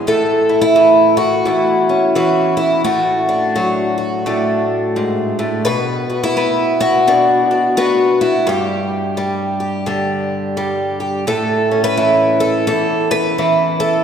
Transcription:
0.00 0.74 E3 medium
0.07 1.46 A2 medium
0.07 0.61 A4 medium
0.49 0.60 E4 soft
0.61 1.17 E4 medium
0.76 2.14 E3 medium
1.17 2.14 F#4 medium
1.45 2.85 E2 medium
1.45 2.56 E4 soft
1.89 2.83 C#4 soft
2.15 2.85 E3 medium
2.15 2.56 F#4 medium
2.57 2.84 E4 medium
2.84 4.25 A2 medium
2.84 3.96 F#4 medium
3.29 4.26 D4 soft
3.56 5.62 F#3 medium
3.98 5.62 F#4 soft
4.26 5.38 A2 medium
4.26 6.09 D4 soft
4.96 5.39 G#2 medium
5.39 5.66 A2 medium
5.65 7.06 B2 medium
5.65 6.22 B4 loud
6.10 6.79 F#4 soft
6.23 7.49 E4 medium
6.37 7.76 B3 medium
6.81 7.76 F#4 medium
7.07 8.44 B2 medium
7.07 7.50 D4 soft
7.51 8.44 D4 soft
7.77 8.44 B3 medium
7.77 8.47 F#4 medium
8.21 8.47 E4 medium
8.47 11.24 G2 medium
8.47 9.59 G4 medium
9.17 10.56 G3 medium
9.60 9.86 G4 soft
9.86 11.24 D3 medium
9.86 10.99 G4 soft
10.57 11.24 G3 medium
11.00 11.24 G4 soft
11.27 12.68 A2 medium
11.27 11.83 A4 medium
11.71 14.04 C#4 soft
11.84 12.40 B4 loud
11.97 13.37 E3 medium
12.40 12.66 A4 medium
12.67 14.04 E2 medium
12.67 13.10 A4 medium
13.11 13.80 B4 loud
13.38 14.04 E3 medium
13.80 14.04 A4 medium

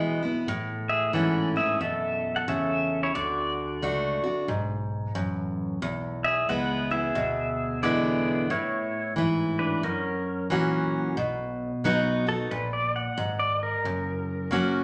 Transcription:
0.00 0.42 B2 medium
0.00 0.45 B2 medium
0.00 0.21 E3 medium
0.00 0.21 G#3 medium
0.00 0.22 B3 medium
0.00 0.21 E4 loud
0.23 0.47 B3 medium
0.23 0.46 E4 medium
0.47 1.12 A2 medium
0.47 1.77 A2 loud
0.89 1.13 G#4 medium
0.89 1.12 E5 loud
1.13 1.79 G#2 loud
1.13 1.54 E3 medium
1.13 1.55 C#4 medium
1.13 1.55 E4 medium
1.13 1.54 A4 medium
1.13 1.54 F#5 medium
1.56 1.81 C#4 soft
1.56 1.80 E4 medium
1.56 1.80 G#4 medium
1.56 1.80 E5 loud
1.81 2.46 F#2 medium
1.81 2.45 B2 medium
1.81 2.32 A4 medium
1.81 2.37 E5 medium
2.36 2.47 A4 medium
2.36 2.48 F#5 medium
2.48 3.13 E2 medium
2.48 3.12 C#3 medium
2.48 2.99 A4 medium
2.48 3.03 E5 medium
3.03 3.14 E4 medium
3.03 3.15 C#5 medium
3.14 3.79 D2 medium
3.14 4.44 D3 medium
3.14 3.78 F#4 medium
3.14 3.82 D5 medium
3.81 4.21 C#2 loud
3.81 4.23 A3 medium
3.81 4.23 D4 loud
3.81 4.22 F#4 loud
4.24 4.49 D4 soft
4.24 4.47 F#4 medium
4.48 5.13 B1 medium
4.48 5.13 G#2 medium
5.15 5.80 A1 medium
5.15 5.80 F#2 medium
5.81 6.47 B1 medium
5.81 7.11 E2 loud
6.24 6.48 G#4 medium
6.24 6.50 E5 loud
6.48 7.14 C#2 medium
6.48 6.90 G#3 loud
6.48 6.90 B3 medium
6.48 6.90 E4 medium
6.48 6.89 B4 medium
6.48 6.89 F#5 medium
6.91 7.16 B3 soft
6.91 7.15 E4 medium
6.91 7.79 G#4 medium
6.91 7.86 E5 loud
7.15 7.81 D2 medium
7.15 8.45 B2 medium
7.82 8.48 E2 medium
7.82 8.47 D3 medium
7.82 8.48 G#3 loud
7.82 8.48 B3 medium
7.82 8.48 E4 medium
7.82 8.46 G#4 medium
7.82 8.50 D5 loud
8.49 9.15 A2 medium
8.49 9.79 A2 medium
8.49 9.13 E4 medium
8.49 9.13 C#5 medium
9.16 9.81 G#2 medium
9.16 9.81 E3 medium
9.16 9.82 E4 loud
9.59 9.82 D4 medium
9.59 9.82 B4 loud
9.83 10.48 F#2 medium
9.83 11.12 F#2 medium
9.83 10.47 C#4 medium
9.83 10.47 A#4 loud
10.50 11.15 A#2 medium
10.50 11.15 E3 medium
10.50 11.15 A#3 medium
10.50 11.15 C#4 medium
10.50 11.16 F#4 loud
11.17 11.71 B1 loud
11.17 12.46 B2 loud
11.84 12.41 B1 medium
11.84 12.25 F#3 medium
11.84 12.25 B3 loud
11.84 12.25 D#4 loud
11.84 12.25 F#4 loud
12.27 12.51 D#4 soft
12.27 12.50 F#4 medium
12.27 12.50 A4 medium
12.51 13.08 A#1 medium
12.51 13.16 A#2 medium
12.51 12.73 B4 medium
12.73 12.95 D5 medium
12.96 13.39 F#5 medium
13.17 13.74 G#1 medium
13.17 13.82 G#2 medium
13.39 13.61 D5 loud
13.63 14.84 A#4 medium
13.84 14.84 F#1 loud
13.84 14.84 F#2 medium
14.51 14.84 F#3 medium
14.51 14.84 A#3 medium
14.51 14.84 C#4 loud
14.51 14.84 F#4 loud

